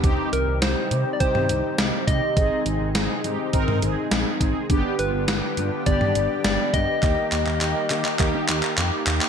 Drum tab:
HH |x-x-x-x-x-x-x-x-|x-x-x-x-x-x-x-x-|x-x-x-x-x-x-x-x-|x-x-x-x-x-x-x-x-|
CP |----------------|----------------|----------------|x-xxx-xxx-xxx-xx|
SD |----o-------o---|----o-------o---|----o-------o---|----------------|
T2 |---------o------|---------o------|---------o------|----------------|
BD |o-------o-----o-|o-------o-----o-|o-------o-----o-|o-------o-------|